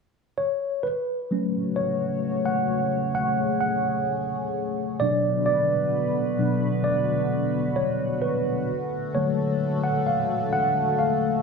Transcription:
0.38 tine electric piano C#5
0.83 tine electric piano B4
1.30 analog synth pad C#3 A3 F#4 C#5, tine electric piano F#3 A3 C#4
1.76 tine electric piano C#5
2.46 tine electric piano F#5
3.15 analog synth pad G#4, tine electric piano F#5
3.61 tine electric piano F#5
5.00 tine electric piano B2 F#3 D4 D5, analog synth pad D3 B3 F#4 B4
5.46 tine electric piano D5
6.39 tine electric piano B2 F#3 D4
6.84 tine electric piano D5
7.76 tine electric piano C#5
8.22 tine electric piano B4
8.70 analog synth pad D3 A3 A4
9.15 tine electric piano D3 F#3 A3 C#5
9.84 tine electric piano F#5
10.07 tine electric piano F5
10.53 tine electric piano F#5
10.99 tine electric piano F5

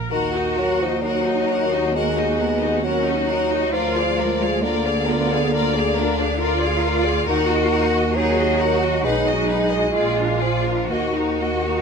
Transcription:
Already playing: viola section A#4
0.10 double bass section D#2, bassoon D#3, cello section F#4, viola section F#4, violin section A#4 F#5
0.34 viola section D#4, violin section F#4 D#5
0.57 bassoon F#3, viola section F#4, violin section A#4 F#5
0.79 bassoon F3, viola section D#4, violin section F#4 D#5
1.02 bassoon F#3, cello section D#4, viola section F#4, violin section A#4 F#5
1.26 viola section D#4, violin section F#4 D#5
1.48 viola section F#4, violin section A#4 F#5
1.73 viola section D#4, violin section F#4 D#5
1.94 bassoon G#3, cello section A#3, viola section F#4, violin section A#4 F#5
2.17 viola section D#4, violin section F#4 D#5
2.39 cello section B3, viola section F#4, violin section A#4 F#5
2.60 viola section D#4, violin section F#4 D#5
2.83 bassoon F#3, cello section C#4, viola section F#4, violin section A#4 F#5
3.04 viola section D#4, violin section D#5
3.09 violin section F#4
3.27 cello section D#4, viola section F#4, violin section F#5
3.31 violin section A#4
3.50 viola section D#4, violin section F#4 D#5
3.72 double bass section D2, bassoon F3, viola section F4, cello section F4, violin section A#4 D5
3.95 viola section G#4, violin section D5 F5
4.18 cello section G#3, viola section F4, violin section A#4 D5
4.39 viola section G#4, violin section D5 F5
4.62 bassoon D3, cello section A#3, viola section F4, violin section A#4 D5
4.85 viola section G#4, violin section D5 F5
5.07 cello section B3, viola section F4, violin section A#4 D5
5.32 viola section G#4, violin section D5 F5
5.53 cello section A#3, viola section F4, violin section A#4 D5
5.74 viola section G#4, violin section D5 F5
5.96 cello section D4, viola section F4, violin section A#4 D5
6.18 viola section G#4, violin section D5 F5
6.38 viola section F4, cello section F4, violin section A#4
6.43 violin section D5
6.60 viola section G#4, violin section D5
6.64 violin section F5
6.81 viola section F4, violin section A#4
6.87 violin section D5
7.04 viola section G#4, violin section D5
7.08 violin section F5
7.26 double bass section D#2, bassoon D#3, viola section D#4, cello section F#4, violin section A#4 F#5
7.48 violin section F#4, viola section F#4
7.53 violin section D#5
7.68 violin section A#4
7.73 viola section D#4, violin section F#5
7.91 violin section F#4, viola section F#4
7.97 violin section D#5
8.13 bassoon F#3, viola section D#4, cello section G#4, violin section A#4
8.18 violin section F#5
8.35 violin section F#4, viola section F#4
8.40 violin section D#5
8.57 viola section D#4, cello section F#4, violin section A#4 F#5
8.79 violin section F#4, viola section F#4
8.84 violin section D#5
9.02 double bass section B1, bassoon G#3, cello section D#4, viola section D#4, violin section B4 F#5
9.26 viola section F#4, violin section D#5
9.48 viola section D#4, violin section B4 F#5
9.71 viola section F#4, violin section D#5
9.93 double bass section A#1, cello section F4, violin section G#4 D5
9.97 viola section F4
10.17 viola section D4, violin section F4 A#4
10.41 bassoon F3, viola section F4, violin section G#4 D5
10.64 viola section D4, violin section F4 A#4
10.89 double bass section D#2, bassoon D#3, viola section A#3, cello section F#4, violin section F#4 D#5
11.14 viola section D#4, violin section D#4 A#4
11.40 viola section A#3, violin section F#4 D#5
11.63 viola section D#4
11.68 violin section D#4 A#4

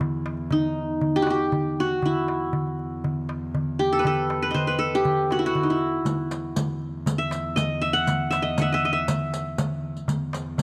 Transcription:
Already playing: double bass E2, qanun E4 F#4
0.01 darbuka dum
0.26 darbuka tek
0.37 darbuka ka
0.51 qanun D#4, darbuka dum
0.65 darbuka ka
0.77 darbuka ka
1.01 darbuka dum
1.16 qanun G4
1.22 qanun F#4
1.27 qanun G4, darbuka tek
1.52 darbuka dum
1.78 qanun F#4, darbuka ka
1.91 darbuka ka
2.02 double bass E2, qanun E4, darbuka dum
2.28 darbuka tek
2.41 darbuka ka
2.53 darbuka dum
2.67 darbuka ka
2.79 darbuka ka
3.04 darbuka dum
3.29 darbuka tek
3.55 darbuka dum
3.79 qanun G4, darbuka ka
3.93 qanun A4, darbuka ka
3.99 qanun B4
4.05 qanun A4, darbuka dum
4.30 darbuka tek
4.42 qanun B4, darbuka ka
4.51 qanun C5 D#5, darbuka dum
4.67 qanun B4
4.79 qanun A4, darbuka ka
4.95 qanun G4
5.05 darbuka dum
5.31 qanun F#4, darbuka tek
5.39 qanun E4
5.46 qanun F#4
5.55 darbuka dum
5.63 qanun D#4
5.68 qanun E4, darbuka ka
5.81 darbuka ka
6.05 double bass E2, riq, darbuka dum
6.31 riq, darbuka tek
6.44 darbuka ka
6.56 riq, darbuka dum
6.82 darbuka ka
7.06 riq, darbuka dum
7.18 qanun E5
7.31 riq, darbuka tek
7.56 qanun D#5, riq, darbuka dum
7.82 qanun E5, darbuka ka
7.93 qanun F#5, riq, darbuka ka
8.07 riq, darbuka dum
8.31 qanun E5, riq, darbuka tek
8.42 qanun D#5, darbuka ka
8.58 qanun E5 F#5, riq, darbuka dum
8.71 qanun D#5 E5, darbuka ka
8.83 qanun D#5, darbuka ka
8.93 qanun E5
9.08 riq, darbuka dum
9.34 riq
9.58 riq, darbuka dum
9.84 darbuka ka
9.97 riq, darbuka ka
10.08 double bass E2, riq, darbuka dum
10.33 riq, darbuka tek
10.46 darbuka ka
10.58 riq, darbuka dum

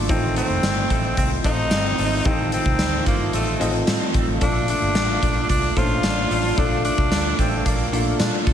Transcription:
Already playing: grand piano A#2 D4 F4 A4 D5, clean electric guitar A3 D4, analog synth pad C6
0.08 fingered electric bass A1, grand piano A2 C4 D#4 F4 A4 D#5, clean electric guitar D#3, tenor saxophone C4, analog synth pad F4 D#5 A5, kick, closed hi-hat
0.36 clean electric guitar A3, tenor saxophone C4, closed hi-hat
0.50 fingered electric bass F1
0.63 fingered electric bass G1, clean electric guitar C4, snare, closed hi-hat, tambourine
0.90 fingered electric bass A1, clean electric guitar A3, kick, closed hi-hat
1.17 fingered electric bass C2, clean electric guitar C4, tenor saxophone C4, kick, closed hi-hat
1.44 fingered electric bass A1, clean electric guitar A3, grand piano C4 D#4 F4 A4 D#5, tenor saxophone D#4, kick, closed hi-hat
1.71 fingered electric bass G1, clean electric guitar C4, snare, closed hi-hat, tambourine
1.98 fingered electric bass G#1, clean electric guitar A3, open hi-hat
2.25 fingered electric bass A1, grand piano A2 C4 D#4 F4 G4 D#5, clean electric guitar D#3, tenor saxophone C4, kick, closed hi-hat
2.32 grand piano A4
2.52 clean electric guitar A3, tenor saxophone C4, closed hi-hat
2.66 fingered electric bass C2, kick
2.79 fingered electric bass D2, clean electric guitar C4, snare, closed hi-hat, tambourine
3.06 fingered electric bass G1, clean electric guitar A3, tenor saxophone A#3, kick, closed hi-hat
3.33 fingered electric bass A1, tenor saxophone A3, clean electric guitar C4, closed hi-hat
3.60 fingered electric bass A1, clean electric guitar A3, grand piano C4 D#4 F4 A4 D#5, closed hi-hat
3.87 fingered electric bass A2, clean electric guitar C4, snare, closed hi-hat, tambourine
4.14 fingered electric bass A1, clean electric guitar A3, kick, closed hi-hat
4.28 fingered electric bass A1
4.41 fingered electric bass A#1, grand piano A#2 A3 D4 F4 A4 D5, clean electric guitar A3, tenor saxophone D4, analog synth pad D5 F5, kick, closed hi-hat
4.68 clean electric guitar A3, tenor saxophone D4, closed hi-hat
4.82 fingered electric bass G1
4.95 fingered electric bass A1, clean electric guitar D4, snare, closed hi-hat, tambourine
5.22 fingered electric bass A#1, clean electric guitar A3, kick, closed hi-hat
5.49 fingered electric bass C2, clean electric guitar D4, tenor saxophone D4, kick, closed hi-hat
5.76 fingered electric bass A#1, grand piano A#2 C#4 F4 A4 C5, clean electric guitar A3, tenor saxophone F4, kick, closed hi-hat
5.82 grand piano D4
6.03 fingered electric bass A1, clean electric guitar D4, snare, closed hi-hat, tambourine
6.31 fingered electric bass A1, clean electric guitar A3, open hi-hat
6.58 fingered electric bass A#1, grand piano A#2 A3 D4 F4 A4 D5, clean electric guitar A3, tenor saxophone D4, kick, closed hi-hat
6.85 clean electric guitar A3, tenor saxophone D4, closed hi-hat
6.98 fingered electric bass C2, kick
7.12 fingered electric bass D2, clean electric guitar D4, snare, closed hi-hat, tambourine
7.39 fingered electric bass A1, clean electric guitar A3, tenor saxophone C4, kick, closed hi-hat
7.66 fingered electric bass A#1, tenor saxophone A#3, clean electric guitar D4, kick, closed hi-hat
7.92 fingered electric bass A#1, grand piano A#2 D4 F4 A4 F5, clean electric guitar A3, closed hi-hat
8.20 fingered electric bass A#2, clean electric guitar D4, snare, closed hi-hat, tambourine
8.46 fingered electric bass A#1, clean electric guitar A3, kick, open hi-hat

